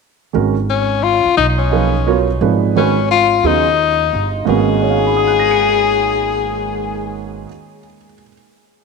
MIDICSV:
0, 0, Header, 1, 5, 480
1, 0, Start_track
1, 0, Tempo, 343446
1, 477, Time_signature, 3, 2, 24, 8
1, 12359, End_track
2, 0, Start_track
2, 0, Title_t, "Upright piano"
2, 0, Program_c, 0, 0
2, 465, Note_on_c, 0, 51, 54
2, 473, Note_on_c, 0, 56, 49
2, 479, Note_on_c, 0, 61, 50
2, 481, Note_on_c, 0, 66, 52
2, 488, Note_on_c, 0, 70, 57
2, 744, Note_off_c, 0, 51, 0
2, 747, Note_off_c, 0, 56, 0
2, 750, Note_off_c, 0, 61, 0
2, 751, Note_off_c, 0, 66, 0
2, 755, Note_off_c, 0, 70, 0
2, 2398, Note_on_c, 0, 53, 49
2, 2399, Note_on_c, 0, 58, 47
2, 2404, Note_on_c, 0, 63, 49
2, 2408, Note_on_c, 0, 68, 45
2, 2417, Note_on_c, 0, 71, 55
2, 2672, Note_off_c, 0, 53, 0
2, 2673, Note_off_c, 0, 58, 0
2, 2675, Note_off_c, 0, 63, 0
2, 2678, Note_off_c, 0, 68, 0
2, 2682, Note_off_c, 0, 71, 0
2, 2885, Note_on_c, 0, 59, 53
2, 2887, Note_on_c, 0, 54, 60
2, 2892, Note_on_c, 0, 65, 59
2, 2896, Note_on_c, 0, 70, 54
2, 2902, Note_on_c, 0, 73, 61
2, 3156, Note_off_c, 0, 59, 0
2, 3158, Note_off_c, 0, 54, 0
2, 3160, Note_off_c, 0, 65, 0
2, 3162, Note_off_c, 0, 70, 0
2, 3165, Note_off_c, 0, 73, 0
2, 3366, Note_on_c, 0, 53, 52
2, 3375, Note_on_c, 0, 46, 46
2, 3378, Note_on_c, 0, 63, 47
2, 3381, Note_on_c, 0, 68, 45
2, 3384, Note_on_c, 0, 71, 57
2, 3828, Note_off_c, 0, 53, 0
2, 3832, Note_off_c, 0, 46, 0
2, 3833, Note_off_c, 0, 63, 0
2, 3835, Note_off_c, 0, 68, 0
2, 3837, Note_off_c, 0, 71, 0
2, 3853, Note_on_c, 0, 51, 58
2, 3858, Note_on_c, 0, 56, 49
2, 3862, Note_on_c, 0, 61, 56
2, 3866, Note_on_c, 0, 66, 49
2, 3875, Note_on_c, 0, 71, 65
2, 4121, Note_off_c, 0, 51, 0
2, 4124, Note_off_c, 0, 56, 0
2, 4126, Note_off_c, 0, 61, 0
2, 4128, Note_off_c, 0, 66, 0
2, 4132, Note_off_c, 0, 71, 0
2, 4801, Note_on_c, 0, 49, 57
2, 4805, Note_on_c, 0, 54, 49
2, 4806, Note_on_c, 0, 59, 52
2, 4810, Note_on_c, 0, 65, 52
2, 4819, Note_on_c, 0, 68, 63
2, 5076, Note_off_c, 0, 49, 0
2, 5078, Note_off_c, 0, 54, 0
2, 5079, Note_off_c, 0, 59, 0
2, 5081, Note_off_c, 0, 65, 0
2, 5085, Note_off_c, 0, 68, 0
2, 6222, Note_on_c, 0, 44, 59
2, 6234, Note_on_c, 0, 51, 56
2, 6239, Note_on_c, 0, 59, 53
2, 6249, Note_on_c, 0, 61, 56
2, 6255, Note_on_c, 0, 66, 55
2, 6268, Note_on_c, 0, 58, 60
2, 6734, Note_on_c, 0, 73, 45
2, 6839, Note_on_c, 0, 77, 41
2, 6960, Note_on_c, 0, 80, 41
2, 7080, Note_on_c, 0, 83, 38
2, 7220, Note_on_c, 0, 87, 36
2, 7370, Note_on_c, 0, 90, 35
2, 7539, Note_on_c, 0, 94, 35
2, 7705, Note_on_c, 0, 97, 31
2, 10426, Note_off_c, 0, 44, 0
2, 10437, Note_off_c, 0, 51, 0
2, 10442, Note_off_c, 0, 59, 0
2, 10452, Note_off_c, 0, 61, 0
2, 10458, Note_off_c, 0, 66, 0
2, 10472, Note_off_c, 0, 58, 0
2, 10881, Note_off_c, 0, 73, 0
2, 10987, Note_off_c, 0, 77, 0
2, 11107, Note_off_c, 0, 80, 0
2, 11228, Note_off_c, 0, 83, 0
2, 11367, Note_off_c, 0, 87, 0
2, 11486, Note_off_c, 0, 90, 0
2, 11570, Note_off_c, 0, 94, 0
2, 11653, Note_off_c, 0, 97, 0
2, 12359, End_track
3, 0, Start_track
3, 0, Title_t, "Tenor saxophone"
3, 0, Program_c, 1, 66
3, 974, Note_on_c, 1, 61, 83
3, 1441, Note_on_c, 1, 65, 101
3, 1462, Note_off_c, 1, 61, 0
3, 1910, Note_off_c, 1, 65, 0
3, 1918, Note_on_c, 1, 63, 84
3, 2055, Note_off_c, 1, 63, 0
3, 2213, Note_on_c, 1, 61, 80
3, 3124, Note_off_c, 1, 61, 0
3, 3875, Note_on_c, 1, 61, 75
3, 4308, Note_off_c, 1, 61, 0
3, 4346, Note_on_c, 1, 65, 98
3, 4843, Note_on_c, 1, 63, 88
3, 4864, Note_off_c, 1, 65, 0
3, 6088, Note_off_c, 1, 63, 0
3, 6270, Note_on_c, 1, 68, 85
3, 10197, Note_off_c, 1, 68, 0
3, 12359, End_track
4, 0, Start_track
4, 0, Title_t, "Upright bass"
4, 0, Program_c, 2, 32
4, 484, Note_on_c, 2, 32, 68
4, 1690, Note_off_c, 2, 32, 0
4, 1920, Note_on_c, 2, 35, 73
4, 3307, Note_off_c, 2, 35, 0
4, 3367, Note_on_c, 2, 32, 76
4, 4751, Note_off_c, 2, 32, 0
4, 4798, Note_on_c, 2, 39, 77
4, 5706, Note_off_c, 2, 39, 0
4, 5774, Note_on_c, 2, 31, 65
4, 6217, Note_off_c, 2, 31, 0
4, 6247, Note_on_c, 2, 32, 73
4, 10394, Note_off_c, 2, 32, 0
4, 12359, End_track
5, 0, Start_track
5, 0, Title_t, "Muted upright bass strokes"
5, 1751, Note_on_c, 9, 29, 35
5, 1891, Note_off_c, 9, 29, 0
5, 12359, End_track
0, 0, End_of_file